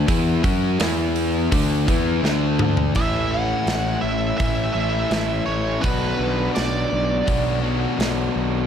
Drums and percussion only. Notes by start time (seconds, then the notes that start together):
0.08 kick, open hi-hat
0.44 kick, open hi-hat
0.80 snare, open hi-hat
1.16 open hi-hat
1.52 kick, open hi-hat
1.88 kick, open hi-hat
2.25 snare
2.59 mid tom
2.77 floor tom
2.95 kick, open hi-hat
3.67 snare, open hi-hat
4.40 kick, open hi-hat
5.11 snare, open hi-hat
5.84 kick, open hi-hat
6.56 snare, open hi-hat
7.28 kick, open hi-hat
8.00 snare, open hi-hat